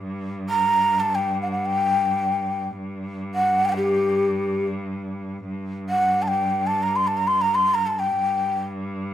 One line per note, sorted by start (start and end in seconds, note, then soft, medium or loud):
0.04 2.76 G2 medium
0.50 1.01 A#5 medium
1.00 1.16 A5 medium
1.15 1.41 G5 medium
1.42 1.51 F#5 medium
1.51 1.67 F#5 medium
1.66 2.66 G5 medium
2.77 5.46 G2 medium
3.35 3.67 F#5 medium
3.65 3.71 G5 medium
3.69 3.73 F#5 medium
3.69 3.76 G5 medium
3.76 4.66 G4 medium
5.47 8.18 G2 medium
5.89 6.24 F#5 medium
6.22 6.29 A5 medium
6.28 6.68 G5 medium
6.67 6.84 A5 medium
6.83 6.97 A#5 medium
6.96 7.09 C6 medium
7.07 7.19 A5 medium
7.17 7.29 A#5 medium
7.27 7.43 C6 medium
7.41 7.56 A#5 medium
7.55 7.76 C6 medium
7.74 7.88 A#5 medium
7.87 8.01 A5 medium
7.99 8.63 G5 medium
8.18 9.14 G2 medium